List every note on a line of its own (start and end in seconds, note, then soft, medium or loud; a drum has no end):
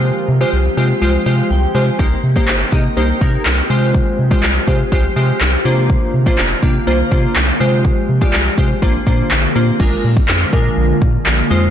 0.00 0.11 C3 loud
0.00 1.97 F3 medium
0.00 0.28 G#3 medium
0.00 1.97 G#3 medium
0.00 8.78 C4 medium
0.00 0.28 F4 medium
0.00 0.29 G4 medium
0.00 3.66 G4 medium
0.00 0.29 C5 medium
0.28 0.44 C3 loud
0.41 0.57 G#3 medium
0.41 0.58 F4 medium
0.41 0.58 G4 medium
0.41 0.58 C5 medium
0.53 0.69 C2 medium
0.77 0.93 C3 loud
0.77 0.88 G#3 medium
0.77 0.89 F4 medium
0.77 0.89 G4 medium
0.77 0.89 C5 medium
1.02 1.18 C2 loud
1.02 1.13 G#3 medium
1.02 1.13 F4 medium
1.02 1.13 G4 medium
1.02 1.13 C5 medium
1.26 1.42 C3 loud
1.26 1.48 G#3 medium
1.26 1.48 F4 medium
1.26 1.49 G4 medium
1.26 1.49 C5 medium
1.26 1.49 F5 medium
1.50 1.66 C2 loud
1.50 1.73 G5 medium
1.75 1.91 C3 loud
1.75 1.86 G#3 medium
1.75 1.86 F4 medium
1.75 1.86 G4 medium
1.75 1.86 C5 medium
1.75 1.97 G#5 medium
1.99 2.15 C2 loud
1.99 3.68 D#3 medium
1.99 2.16 A#3 medium
1.99 3.68 A#3 medium
1.99 2.16 D#4 medium
1.99 2.16 G4 medium
1.99 2.16 C5 medium
1.99 kick loud
2.24 2.39 C3 loud
2.36 2.53 A#3 medium
2.36 2.53 D#4 medium
2.36 2.53 G4 medium
2.36 2.53 C5 medium
2.36 kick medium
2.48 2.64 G1 medium
2.48 clap loud
2.72 2.88 C3 loud
2.72 2.84 A#3 medium
2.72 2.84 D#4 medium
2.72 2.84 G4 medium
2.72 2.84 D#5 medium
2.72 kick medium
2.97 3.13 C2 loud
2.97 3.08 A#3 medium
2.97 3.08 D#4 medium
2.97 3.08 G4 medium
2.97 3.08 C5 medium
3.21 3.37 C3 loud
3.21 3.44 A#3 medium
3.21 3.44 D#4 medium
3.21 3.44 G4 medium
3.21 3.44 A#4 medium
3.21 kick medium
3.46 3.61 C2 loud
3.46 clap loud
3.70 4.02 C3 medium
3.70 5.63 F3 medium
3.70 4.19 G#3 medium
3.70 5.63 G#3 medium
3.70 4.19 F4 medium
3.70 4.19 G4 medium
3.70 5.63 G4 medium
3.70 4.19 C5 medium
3.95 kick loud
4.19 4.35 C3 medium
4.31 4.48 G#3 medium
4.31 4.48 F4 medium
4.31 4.48 G4 medium
4.31 4.48 C5 medium
4.31 kick loud
4.43 4.59 C2 loud
4.43 clap loud
4.67 4.83 C3 loud
4.67 4.79 G#3 medium
4.67 4.79 F4 medium
4.67 4.79 G4 medium
4.67 4.79 C5 medium
4.67 kick medium
4.92 5.08 C2 loud
4.92 5.03 G#3 medium
4.92 5.03 F4 medium
4.92 5.03 G4 medium
4.92 5.03 C5 medium
4.92 kick medium
5.16 5.32 C3 loud
5.16 5.39 G#3 medium
5.16 5.39 F4 medium
5.16 5.39 G4 medium
5.16 5.39 C5 medium
5.41 5.57 C2 loud
5.41 clap loud
5.65 5.97 C3 loud
5.65 7.58 D3 medium
5.65 6.14 A#3 medium
5.65 7.58 A#3 medium
5.65 6.14 D4 medium
5.65 7.58 F4 medium
5.65 6.14 F4 medium
5.65 6.14 C5 medium
5.90 kick loud
6.14 6.30 C3 loud
6.26 6.43 A#3 medium
6.26 6.43 D4 medium
6.26 6.43 F4 medium
6.26 6.43 C5 medium
6.26 kick medium
6.38 6.54 F1 medium
6.38 clap loud
6.63 6.79 C3 loud
6.63 6.74 A#3 medium
6.63 6.74 D4 medium
6.63 6.74 F4 medium
6.63 6.74 G4 medium
6.63 kick medium
6.87 7.03 C2 loud
6.87 6.98 A#3 medium
6.87 6.98 D4 medium
6.87 6.98 F4 medium
6.87 6.98 C5 medium
7.11 7.27 C3 loud
7.11 7.34 A#3 medium
7.11 7.34 D4 medium
7.11 7.34 F4 medium
7.11 7.34 C5 medium
7.11 kick medium
7.36 7.52 C2 loud
7.36 clap loud
7.60 7.92 C3 loud
7.60 8.81 F3 medium
7.60 8.09 G#3 medium
7.60 8.81 G#3 medium
7.60 8.09 F4 medium
7.60 8.81 G4 medium
7.60 8.09 G4 medium
7.60 8.09 C5 loud
7.85 kick loud
8.09 8.25 C3 loud
8.21 8.38 G#3 medium
8.21 8.38 F4 medium
8.21 8.38 G4 medium
8.21 8.38 D5 medium
8.21 kick medium
8.33 8.49 C2 medium
8.33 clap loud
8.58 8.74 C3 loud
8.58 8.69 G#3 medium
8.58 8.69 F4 medium
8.58 8.69 G4 medium
8.58 8.69 C5 medium
8.58 kick loud
8.82 8.98 A#1 medium
8.82 9.79 D3 medium
8.82 8.93 A#3 medium
8.82 9.79 A#3 medium
8.82 9.79 C4 medium
8.82 8.93 D4 medium
8.82 8.94 F4 medium
8.82 9.79 F4 medium
8.82 8.94 C5 medium
8.82 kick loud
9.07 9.22 A#2 loud
9.07 9.29 A#3 medium
9.07 9.29 D4 medium
9.07 9.29 F4 medium
9.07 9.29 C5 medium
9.07 kick medium
9.31 9.47 A#1 medium
9.31 clap loud
9.55 9.71 A#2 loud
9.55 9.67 A#3 medium
9.55 9.67 D4 medium
9.55 9.67 F4 medium
9.55 9.67 C5 medium
9.80 9.96 A#1 loud
9.80 11.49 D3 medium
9.80 10.08 G#3 medium
9.80 11.70 G#3 medium
9.80 11.49 A#3 medium
9.80 10.08 D4 medium
9.80 11.70 F4 medium
9.80 10.08 F4 medium
9.80 10.08 A#4 medium
9.80 kick loud
9.80 crash medium
10.04 10.20 A#2 loud
10.17 kick loud
10.28 10.45 F2 medium
10.28 clap loud
10.40 10.46 F4 medium
10.40 10.46 C5 medium
10.53 10.69 A#2 loud
10.53 10.98 G#3 medium
10.53 10.98 D4 medium
10.53 10.98 F4 medium
10.53 10.98 A#4 medium
10.53 kick medium
10.77 10.93 A#1 loud
11.02 11.18 A#2 loud
11.02 kick medium
11.26 11.42 A#1 loud
11.26 clap loud
11.50 11.70 F2 loud
11.50 11.70 D#3 medium
11.50 11.70 G#3 medium
11.50 11.70 C4 medium
11.50 11.70 D#4 medium
11.50 11.70 F4 medium
11.50 11.70 C5 loud